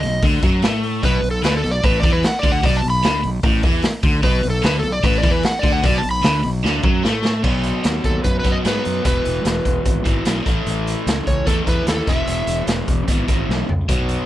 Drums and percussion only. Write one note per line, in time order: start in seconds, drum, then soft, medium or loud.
0.03 snare soft
0.03 open hi-hat medium
0.23 kick loud
0.23 open hi-hat medium
0.42 kick loud
0.42 open hi-hat medium
0.62 snare loud
0.62 open hi-hat medium
0.83 open hi-hat soft
1.03 kick loud
1.03 open hi-hat medium
1.24 open hi-hat medium
1.43 snare loud
1.43 open hi-hat medium
1.64 snare soft
1.64 open hi-hat medium
1.84 kick loud
1.84 open hi-hat medium
2.03 kick loud
2.03 open hi-hat medium
2.23 snare loud
2.23 open hi-hat medium
2.43 kick loud
2.43 open hi-hat medium
2.63 kick loud
2.63 open hi-hat medium
2.84 open hi-hat medium
3.03 snare loud
3.03 open hi-hat medium
3.24 open hi-hat medium
3.43 kick loud
3.43 open hi-hat medium
3.63 kick loud
3.63 open hi-hat medium
3.82 snare loud
3.82 open hi-hat medium
4.03 kick loud
4.03 open hi-hat soft
4.23 kick loud
4.23 open hi-hat medium
4.43 open hi-hat medium
4.63 snare loud
4.63 open hi-hat medium
4.83 open hi-hat medium
5.04 kick loud
5.04 open hi-hat medium
5.23 kick loud
5.23 open hi-hat medium
5.43 snare loud
5.43 open hi-hat medium
5.63 kick loud
5.63 open hi-hat medium
5.84 kick loud
5.84 open hi-hat medium
6.03 open hi-hat medium
6.23 snare loud
6.23 open hi-hat medium
6.43 open hi-hat medium
6.65 snare medium
6.84 kick loud
7.05 snare medium
7.25 snare medium
7.44 kick loud
7.44 crash medium
7.63 closed hi-hat medium
7.84 snare loud
7.84 closed hi-hat medium
8.04 kick medium
8.04 closed hi-hat medium
8.24 kick medium
8.24 closed hi-hat medium
8.44 kick medium
8.44 closed hi-hat medium
8.65 snare loud
8.65 closed hi-hat medium
8.85 closed hi-hat medium
9.05 kick loud
9.05 closed hi-hat medium
9.25 closed hi-hat medium
9.45 snare loud
9.45 closed hi-hat medium
9.65 kick medium
9.65 closed hi-hat medium
9.85 kick medium
9.85 closed hi-hat medium
10.05 kick medium
10.05 closed hi-hat medium
10.25 snare loud
10.25 closed hi-hat medium
10.46 kick medium
10.46 closed hi-hat medium
10.67 closed hi-hat medium
10.87 closed hi-hat medium
11.07 snare loud
11.07 closed hi-hat medium
11.27 kick medium
11.27 closed hi-hat medium
11.47 kick medium
11.47 closed hi-hat medium
11.67 kick medium
11.67 closed hi-hat medium
11.87 snare loud
11.87 closed hi-hat medium
12.07 kick loud
12.07 closed hi-hat medium
12.27 closed hi-hat medium
12.47 closed hi-hat medium
12.67 snare loud
12.67 closed hi-hat medium
12.88 kick medium
12.88 closed hi-hat medium
13.08 kick medium
13.08 closed hi-hat medium
13.28 kick medium
13.28 closed hi-hat medium
13.50 snare medium
13.69 floor tom medium
13.89 kick loud
13.89 closed hi-hat medium
14.09 closed hi-hat medium